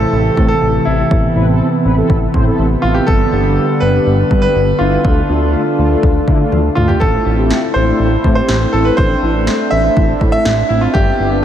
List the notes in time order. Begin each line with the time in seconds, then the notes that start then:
Already playing: C3 E3 A3 A4
0.01 C4 E4 A4
0.13 A1
0.37 A2 C4 E4 A4, kick
0.48 C4 E4 A4
0.62 A1
0.85 A1 C4 E4 A4
1.11 A1 B3, kick
1.36 A1 C4 E4 B4
1.48 C4 E4 A4
1.85 A1 C4 E4 B4
1.97 C4 E4 A4
2.10 A1, kick
2.34 A2 C4 E4 C5, kick
2.46 C4 E4 A4
2.59 A1
2.82 A1 C4 E4 F4 A4
2.94 G4
3.07 G1 D3 G3 A4, kick
3.32 G1 B3 D4 G4
3.45 B3 D4 G4
3.80 G1 B3 D4 G4 B4
3.94 B3 D4 G4
4.06 G1
4.31 G2 B3 D4 G4, kick
4.42 B3 D4 G4 B4
4.56 G1
4.79 G1 B3 D4 E4 F4
5.05 D2 D3 D4 F4 A4, kick
5.29 D2 A3 D4 F4
5.42 A3 D4 F4
5.78 D2 A3 D4 F4
5.91 A3 D4 F4
6.03 D2, kick
6.28 D3 A3 D4 E4, kick
6.40 A3 D4 F4
6.52 D2, high tom
6.75 D2 A3 D4 F4, mid tom
6.88 G4, floor tom
7.00 A1 A3 C4 E4 A4, kick
7.26 A1 A3 C4 E4
7.38 A3 C4 G4
7.51 snare
7.74 A1 A3 C4 E4 C5
7.88 A3 C4 D4
8.00 A1
8.24 A2 A3 C4 E4, kick
8.35 A3 C4 G4 C5
8.49 A1, snare
8.72 A1 A3 C4 E4 A4
8.85 B4
8.97 A1 D4 C5, kick
9.23 A1 A3 C4 E4
9.35 A3 C4 E4
9.47 snare
9.71 A1 A3 C4 E4 E5
9.84 A3 C4 E4
9.97 A1, kick
10.21 A2 A3 C4 E4, kick
10.32 A3 C4 E4 E5
10.45 A1, snare
10.69 A1 A3 C4 E4
10.81 F4
10.94 G1 B3 D4 G4, kick
11.19 G1 G3 B3 D4
11.32 G3 B3 D4